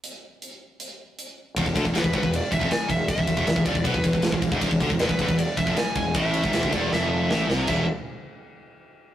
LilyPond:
<<
  \new Staff \with { instrumentName = "Lead electric guitar" } { \time 4/4 \tempo 4 = 157 r1 | r4 b'8 b'8 d''8 e''8 gis''8 e''8 | e''4. d''8 b'4. r8 | r4 b'8 b'8 d''8 e''8 gis''8 gis''8 |
e''4. d''8 e''4. r8 | e''8 r2. r8 | }
  \new Staff \with { instrumentName = "Distorted electric guitar" } { \clef bass \time 4/4 r1 | e,16 e,16 d16 e,16 e,16 e,16 gis,16 e,8 r16 e,16 f,16 r8 e,8 | r16 e,16 e,16 e,16 e,16 e,16 f,16 e,16 b,16 e,16 e,16 e,16 e,16 e,16 e,16 e,16 | e,16 e,16 d16 e,16 e,16 e,16 gis,16 e,8 r16 e,16 f,16 r8 e,8 |
a,8. gis,16 e,16 d16 e,8 f,4 a,8 c8 | <e, b, e>8 r2. r8 | }
  \new Staff \with { instrumentName = "Fingered electric bass" } { \clef bass \time 4/4 r1 | e,,16 e,,16 d,16 e,,16 e,,16 e,,16 gis,,16 e,,8 r16 e,,16 f,,16 r8 e,,8 | r16 e,,16 e,,16 e,,16 e,,16 e,,16 f,,16 e,,16 b,,16 e,,16 e,,16 e,,16 e,,16 e,,16 e,,16 e,,16 | e,,16 e,,16 d,16 e,,16 e,,16 e,,16 gis,,16 e,,8 r16 e,,16 f,,16 r8 e,,8 |
a,,8. gis,,16 e,,16 d,16 e,,8 f,,4 a,,8 c,8 | e,,8 r2. r8 | }
  \new DrumStaff \with { instrumentName = "Drums" } \drummode { \time 4/4 hh4 hh4 hh4 hh4 | <bd cymr>16 bd16 <bd cymr>16 bd16 <cymr sn>16 bd16 <bd cymr>16 bd16 cymr8 <bd cymr>16 bd16 <cymr sn>8 <bd cymr>8 | <bd cymr>16 bd16 <bd cymr>16 bd16 <cymr sn>16 bd16 <bd cymr>16 bd16 <bd cymr>16 bd16 <bd cymr>16 bd16 <cymr sn>16 bd16 <bd cymr>16 bd16 | <bd cymr>16 bd16 <bd cymr>16 bd16 <cymr sn>16 bd16 <bd cymr>16 bd16 cymr8 <bd cymr>16 bd16 <cymr sn>8 <bd cymr>8 |
<bd cymr>8 cymr16 bd16 <cymr sn>16 bd16 <bd cymr>8 sn4 sn8 sn8 | <cymc bd>4 r4 r4 r4 | }
>>